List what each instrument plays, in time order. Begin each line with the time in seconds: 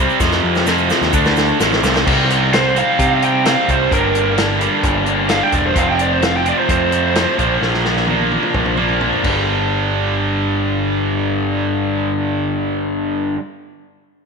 Already playing: distorted electric guitar C3 G3
0.00 distorted electric guitar C4
0.09 shaker
0.19 distorted electric guitar F2 C3 F3, picked electric bass F2, kick, snare, shaker
0.32 snare, shaker
0.43 picked electric bass F2
0.55 snare, shaker
0.66 distorted electric guitar F2 C3 F3, snare, shaker
0.78 shaker
0.90 distorted electric guitar F2 C3 F3, snare, shaker
1.01 picked electric bass D#2, snare, shaker
1.12 picked electric bass D2, distorted electric guitar D3 A3 D4, kick, shaker
1.25 snare, shaker
1.36 snare, shaker
1.48 shaker
1.59 picked electric bass A1, distorted electric guitar F2 C3 F3, snare, shaker
1.72 snare, shaker
1.82 picked electric bass C2, distorted electric guitar F2 C3 F3, snare, shaker
1.96 snare, shaker
2.06 picked electric bass C2, distorted electric guitar C3 G3 C4 D#4, kick, crash
2.29 distorted electric guitar G3 C4 D#4, closed hi-hat
2.52 distorted electric guitar C3 G3 C4 D#4, lead electric guitar C5, snare, closed hi-hat
2.75 distorted electric guitar C3 G3 C4 D#4, lead electric guitar F5, closed hi-hat
2.99 picked electric bass C3, kick, closed hi-hat
3.21 distorted electric guitar G3 C4 D#4, lead electric guitar G5, closed hi-hat
3.44 distorted electric guitar C3 G3 C4 D#4, snare, closed hi-hat
3.49 lead electric guitar F5
3.68 picked electric bass C2, lead electric guitar C5, kick, closed hi-hat
3.90 picked electric bass G1, distorted electric guitar G2 D3 G3 A#3 D4, lead electric guitar A#4, kick, closed hi-hat
4.14 distorted electric guitar G3 A#3 D4, closed hi-hat
4.36 distorted electric guitar G2 D3 G3 A#3 D4, snare, closed hi-hat
4.58 distorted electric guitar D3 G3 A#3 D4, closed hi-hat
4.63 distorted electric guitar G2
4.83 picked electric bass G1, kick, closed hi-hat
5.05 distorted electric guitar G3 A#3 D4, closed hi-hat
5.28 distorted electric guitar G2 D3 G3 A#3 D4, lead electric guitar F5, snare, closed hi-hat
5.43 lead electric guitar G5
5.52 picked electric bass E1, lead electric guitar D5, kick, closed hi-hat
5.67 lead electric guitar C5
5.75 picked electric bass F1, distorted electric guitar F2 C3 F3 A3 C4, lead electric guitar F5, kick, closed hi-hat
5.90 lead electric guitar G5
5.98 distorted electric guitar F3 A3 C4, lead electric guitar D5, closed hi-hat
6.14 lead electric guitar C5
6.21 distorted electric guitar F2 C3 F3 A3 C4, snare, closed hi-hat
6.25 lead electric guitar F5
6.37 lead electric guitar G5
6.44 distorted electric guitar C3 F3 A3 C4, closed hi-hat
6.48 distorted electric guitar F2, lead electric guitar D5
6.59 lead electric guitar C5
6.69 picked electric bass F2, lead electric guitar C5, kick, closed hi-hat
6.91 distorted electric guitar F3 A3 C4, closed hi-hat
7.14 distorted electric guitar F2 C3 F3 A3 C4, snare, closed hi-hat
7.38 picked electric bass A#1, distorted electric guitar A#2 F3 A#3 D4, kick, closed hi-hat
7.61 picked electric bass A#1, distorted electric guitar A#2 F3 A#3 D4, snare
7.74 snare
7.84 distorted electric guitar F3 A#3 D4, snare
7.97 snare
8.07 distorted electric guitar A#2 F3 A#3 D4, high tom
8.19 high tom
8.30 distorted electric guitar F3 A#3 D4, high tom
8.43 mid tom
8.54 picked electric bass A#1, kick, mid tom
8.66 mid tom
8.77 distorted electric guitar F3 A#3 D4, mid tom
8.81 distorted electric guitar A#2
8.89 mid tom
9.00 distorted electric guitar A#2 F3 A#3 D4, mid tom
9.13 floor tom
9.22 picked electric bass G1, distorted electric guitar G2 D3 G3, kick, crash